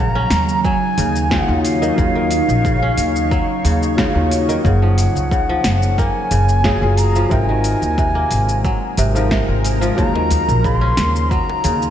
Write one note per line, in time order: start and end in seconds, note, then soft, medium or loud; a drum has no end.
0.00 0.22 A#1 medium
0.00 0.97 C#3 medium
0.00 0.93 F#3 medium
0.00 11.90 F#3 medium
0.00 0.24 A#3 medium
0.00 0.93 A#3 medium
0.00 0.94 C#4 medium
0.00 0.94 D#4 medium
0.00 5.72 D#4 medium
0.00 0.95 F#4 loud
0.00 7.31 C#5 medium
0.00 0.63 A#5 loud
0.15 1.89 C#4 medium
0.30 0.72 D#2 medium
0.30 snare medium
0.30 open hi-hat medium
0.30 shaker medium
0.49 shaker soft
0.64 1.03 F#3 medium
0.64 1.32 G#5 loud
0.64 kick loud
0.64 shaker soft
0.98 1.39 D#2 loud
0.98 1.30 C#3 medium
0.98 open hi-hat medium
0.98 shaker medium
1.16 shaker soft
1.30 1.86 C#3 medium
1.30 1.44 F#3 medium
1.30 1.44 A#3 medium
1.30 1.44 C#4 medium
1.30 1.45 D#4 medium
1.30 1.45 F4 loud
1.30 1.63 F#5 medium
1.30 kick loud
1.30 snare medium
1.30 shaker soft
1.47 1.89 D#2 medium
1.47 1.93 F#3 loud
1.47 1.94 A#3 medium
1.47 1.94 C#4 medium
1.47 1.94 D#4 medium
1.47 1.94 F4 loud
1.64 4.27 F5 loud
1.64 open hi-hat medium
1.64 shaker medium
1.82 2.03 D#3 medium
1.82 shaker soft
1.95 2.39 D#2 loud
1.95 2.20 C#3 medium
1.95 3.60 F#3 medium
1.95 3.60 A#3 medium
1.95 3.61 C#4 medium
1.95 3.61 D#4 medium
1.95 kick loud
1.95 shaker soft
1.99 3.62 F4 loud
2.15 2.70 D#3 medium
2.31 open hi-hat medium
2.31 shaker medium
2.49 2.89 A#1 medium
2.49 shaker soft
2.65 3.64 C#3 medium
2.65 kick loud
2.65 shaker soft
2.82 4.56 C#4 loud
2.98 3.39 D#2 medium
2.98 open hi-hat medium
2.98 shaker medium
3.16 shaker soft
3.31 3.70 F#3 medium
3.31 kick loud
3.31 shaker soft
3.65 4.06 D#2 loud
3.65 3.97 C#3 medium
3.65 open hi-hat medium
3.65 shaker medium
3.83 shaker soft
3.97 4.53 C#3 medium
3.97 4.11 F#3 medium
3.97 4.11 A#3 medium
3.97 4.11 C#4 medium
3.97 4.11 D#4 medium
3.97 4.12 F4 loud
3.97 kick loud
3.97 snare medium
3.97 shaker soft
4.14 4.56 D#2 medium
4.14 4.60 F#3 loud
4.14 4.60 A#3 medium
4.14 4.61 C#4 medium
4.14 4.61 D#4 medium
4.14 4.61 F4 loud
4.31 open hi-hat medium
4.31 shaker medium
4.49 4.70 D#3 medium
4.49 shaker soft
4.64 5.06 F#1 loud
4.64 5.31 C#3 medium
4.64 6.28 F3 medium
4.64 6.27 A#3 medium
4.64 6.28 C#4 medium
4.64 6.28 G#4 loud
4.64 6.00 F#5 medium
4.64 kick loud
4.64 shaker soft
4.82 5.36 F3 medium
4.98 open hi-hat medium
4.98 shaker medium
5.15 5.56 C#2 medium
5.15 shaker soft
5.31 6.30 C#3 medium
5.31 kick loud
5.31 shaker soft
5.49 6.36 F3 loud
5.64 6.06 F#1 medium
5.64 snare medium
5.64 open hi-hat medium
5.64 shaker medium
5.83 8.38 A#5 medium
5.83 shaker soft
5.98 7.91 A#3 medium
5.98 7.00 G#5 loud
5.98 kick loud
5.98 shaker soft
6.31 6.72 F#1 medium
6.31 6.64 C#3 medium
6.31 open hi-hat medium
6.31 shaker medium
6.49 shaker soft
6.64 7.36 C#3 medium
6.64 6.77 F#3 medium
6.64 6.77 A#3 medium
6.64 6.78 C#4 medium
6.64 6.78 F4 medium
6.64 6.78 G#4 loud
6.64 kick loud
6.64 snare medium
6.64 shaker soft
6.80 7.22 F#1 medium
6.80 7.27 F#3 loud
6.80 7.27 A#3 medium
6.80 7.27 C#4 loud
6.80 7.27 F4 loud
6.80 7.28 G#4 loud
6.97 7.33 A#5 loud
6.97 open hi-hat medium
6.97 shaker medium
7.16 7.36 F3 medium
7.16 shaker soft
7.29 7.72 G#1 medium
7.29 7.53 C3 medium
7.29 8.93 F#3 medium
7.29 9.98 G#3 medium
7.29 8.93 C4 medium
7.29 8.94 D#4 medium
7.29 8.94 F4 medium
7.29 8.95 A#4 medium
7.29 7.44 G5 loud
7.29 kick loud
7.29 shaker soft
7.44 9.32 G#5 loud
7.49 8.03 D#3 medium
7.49 11.74 A#4 medium
7.64 open hi-hat medium
7.64 shaker medium
7.82 8.22 D#2 medium
7.82 shaker soft
7.98 8.97 C3 medium
7.98 kick loud
7.98 shaker soft
8.15 10.08 A#3 medium
8.31 8.72 G#1 medium
8.31 open hi-hat medium
8.31 shaker medium
8.49 9.98 C5 medium
8.49 shaker soft
8.65 9.03 F#3 medium
8.65 kick loud
8.65 shaker soft
8.97 9.39 G#1 medium
8.97 9.30 C3 medium
8.97 open hi-hat medium
8.97 shaker medium
9.14 9.36 F3 medium
9.14 9.93 C4 medium
9.14 9.94 D#4 medium
9.14 9.94 F4 medium
9.14 9.95 A#4 medium
9.14 shaker soft
9.31 10.03 C3 medium
9.31 kick loud
9.31 snare medium
9.31 shaker soft
9.48 9.89 G#1 medium
9.64 open hi-hat medium
9.64 shaker medium
9.81 10.03 F3 medium
9.81 shaker soft
9.96 10.39 D#2 loud
9.96 10.20 C#3 medium
9.96 11.60 F#3 loud
9.96 11.60 A#3 medium
9.96 11.61 C#4 medium
9.96 11.90 D#4 medium
9.96 11.61 D#4 medium
9.96 10.61 A#5 loud
9.96 kick loud
9.96 shaker soft
10.00 11.62 F4 medium
10.15 10.70 D#3 medium
10.15 djembe slap medium
10.31 open hi-hat medium
10.31 djembe bass loud
10.31 shaker medium
10.49 10.89 A#1 medium
10.49 djembe tone medium
10.49 shaker soft
10.64 11.63 C#3 medium
10.64 11.90 C#5 medium
10.64 11.32 C6 loud
10.64 kick loud
10.64 shaker soft
10.81 11.90 C#4 medium
10.97 11.39 D#2 medium
10.97 snare medium
10.97 open hi-hat medium
10.97 djembe slap medium
10.97 djembe tone medium
10.97 shaker medium
11.16 shaker soft
11.30 11.70 F#3 medium
11.30 11.90 A#5 loud
11.30 kick loud
11.30 shaker soft
11.49 djembe slap medium
11.64 11.90 D#2 medium
11.64 11.90 C#3 medium
11.64 open hi-hat medium
11.64 shaker medium
11.82 shaker soft